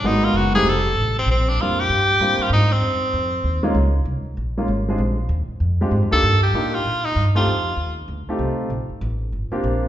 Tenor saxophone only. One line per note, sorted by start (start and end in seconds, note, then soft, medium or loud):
0.06 0.26 D#4 medium
0.24 0.39 F4 loud
0.37 0.54 F#4 medium
0.55 0.71 G#4 loud
0.69 1.17 A4 loud
1.19 1.28 C4 loud
1.31 1.50 C4 medium
1.49 1.63 D4 medium
1.61 1.81 F4 loud
1.80 2.44 G4 loud
2.42 2.52 F4 medium
2.53 2.74 D#4 loud
2.72 3.64 C4 medium
6.13 6.41 A4 loud
6.43 6.76 G4 loud
6.74 7.06 F4 loud
7.05 7.27 D#4 loud
7.36 7.94 F4 medium